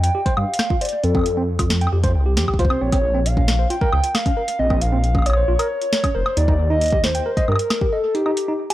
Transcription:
Already playing: G5
0.04 G5, closed hi-hat
0.15 G4
0.26 C5, kick, closed hi-hat
0.37 G2 F5, high woodblock
0.54 closed hi-hat
0.59 snare, high woodblock
0.70 F4, kick
0.81 C5 D5, closed hi-hat
0.85 closed hi-hat
0.89 closed hi-hat
1.04 F2 C4 A4, closed hi-hat
1.15 C4, kick, high woodblock
1.17 high woodblock
1.19 high woodblock
1.21 high woodblock
1.24 closed hi-hat, high woodblock
1.37 C4
1.59 F4, kick, closed hi-hat, high woodblock
1.70 snare
1.81 G5, closed hi-hat
1.87 high woodblock
1.93 F2 G4
2.04 C5, kick, closed hi-hat
2.15 C2
2.26 G4
2.37 F2 G4, snare, closed hi-hat
2.48 G4, kick, high woodblock
2.54 kick
2.59 C2 F4 C5, kick, closed hi-hat
2.65 kick
2.70 C4, high woodblock
2.81 A#1 C4 C#5
2.92 C4, kick, closed hi-hat, high woodblock
3.15 C4
3.26 F5, closed hi-hat
3.37 C#4, kick
3.48 snare
3.59 C5
3.70 F4 G5, closed hi-hat
3.81 A#4, kick
3.93 C#2, high woodblock
4.04 closed hi-hat
4.15 F5, snare, high woodblock
4.26 C#4, kick, closed hi-hat
4.37 A#4
4.48 closed hi-hat
4.59 A#1 C4 D#5
4.70 C4, kick, high woodblock
4.81 F5, closed hi-hat
4.92 C4
5.04 closed hi-hat
5.15 C#4, kick, high woodblock
5.19 high woodblock
5.22 closed hi-hat, high woodblock
5.26 C#5, high woodblock
5.30 high woodblock
5.33 C5, high woodblock
5.48 A#1 F4
5.59 A#4, closed hi-hat, high woodblock
5.82 closed hi-hat
5.93 C#5, snare
6.04 C#4, kick, closed hi-hat, high woodblock
6.15 F1 A#4 C5
6.26 high woodblock
6.37 D#2 D#4 D5, closed hi-hat
6.48 D#4, kick
6.70 D#4 D#5
6.81 closed hi-hat
6.84 closed hi-hat
6.86 closed hi-hat
6.88 closed hi-hat
6.90 G4, kick, closed hi-hat
7.04 C5, snare
7.15 G5, closed hi-hat
7.26 A#4
7.37 D#5, kick, closed hi-hat
7.48 G2 A#4, high woodblock
7.52 high woodblock
7.56 closed hi-hat, high woodblock
7.70 snare, high woodblock
7.81 G4, kick
7.93 A4 D#5
8.15 D#4 G4, closed hi-hat
8.26 D#4, high woodblock
8.37 closed hi-hat
8.48 D#4
8.70 G4, closed hi-hat, high woodblock

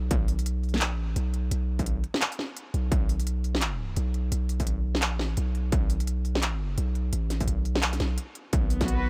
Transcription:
0.11 B1, kick, closed hi-hat
0.28 open hi-hat
0.39 open hi-hat
0.46 closed hi-hat
0.63 open hi-hat
0.69 open hi-hat
0.74 snare, open hi-hat
0.77 clap, closed hi-hat, open hi-hat
0.84 A#1
1.16 B1, closed hi-hat
1.34 closed hi-hat
1.51 B1, closed hi-hat
1.79 kick, open hi-hat
1.86 closed hi-hat
2.04 closed hi-hat
2.14 snare
2.21 clap, closed hi-hat
2.32 open hi-hat
2.39 snare
2.57 closed hi-hat
2.74 B1, closed hi-hat
2.92 B1, kick, closed hi-hat
3.09 open hi-hat
3.20 open hi-hat
3.27 closed hi-hat
3.44 open hi-hat
3.55 snare
3.61 clap, closed hi-hat
3.96 B1, closed hi-hat
4.14 closed hi-hat
4.32 B1, closed hi-hat
4.49 open hi-hat
4.60 kick, open hi-hat
4.67 closed hi-hat
4.95 snare
5.02 A#1, clap, closed hi-hat
5.19 snare
5.37 B1, closed hi-hat
5.55 closed hi-hat
5.72 B1, kick, closed hi-hat
5.90 open hi-hat
6.00 open hi-hat
6.07 closed hi-hat
6.25 open hi-hat
6.35 snare
6.42 clap, closed hi-hat
6.78 B1, closed hi-hat
6.95 closed hi-hat
7.13 A1, closed hi-hat
7.30 snare, open hi-hat
7.40 kick, open hi-hat
7.48 B1, closed hi-hat
7.65 open hi-hat
7.75 snare
7.82 clap, closed hi-hat
7.93 snare, open hi-hat
8.00 B1, snare, closed hi-hat
8.18 closed hi-hat
8.35 closed hi-hat
8.53 B1 B3, kick, closed hi-hat
8.70 open hi-hat
8.81 F#4, kick, snare, open hi-hat
8.88 closed hi-hat
8.95 B4

